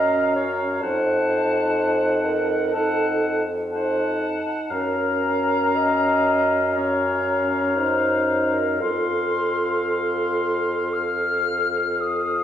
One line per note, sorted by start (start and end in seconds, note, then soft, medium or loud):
0.00 0.83 F#2 soft
0.00 0.67 C#4 soft
0.00 0.35 D#5 medium
0.00 0.80 F5 medium
0.00 0.82 A#5 soft
0.36 0.85 C#5 medium
0.81 4.43 F2 medium
0.81 2.71 D#4 medium
0.81 2.26 C5 medium
0.81 2.71 F#5 soft
0.81 2.48 A5 medium
2.25 2.76 A#4 medium
2.72 3.44 D#4 medium
2.72 3.45 A4 medium
2.72 3.44 F#5 medium
2.72 3.42 A5 soft
3.71 4.72 D#4 medium
3.71 4.19 C5 medium
3.71 4.72 F#5 medium
3.71 4.72 A5 medium
4.70 8.83 F#2 medium
4.70 6.76 C#4 soft
4.70 5.77 A#4 medium
4.70 6.77 F5 soft
4.70 6.74 A#5 medium
5.76 6.78 D#5 medium
6.75 7.77 C#4 soft
6.75 7.76 C#5 medium
6.75 8.79 F5 medium
6.75 8.57 A#5 medium
7.76 8.81 D#4 soft
7.76 8.54 C5 medium
8.53 8.81 A#4 medium
8.80 12.44 F2 soft
8.80 12.44 F4 soft
8.80 12.44 A4 soft
8.80 12.44 F5 soft
8.80 9.77 C6 soft
9.89 10.95 C6 medium
10.93 12.02 F6 medium
12.00 12.44 D#6 medium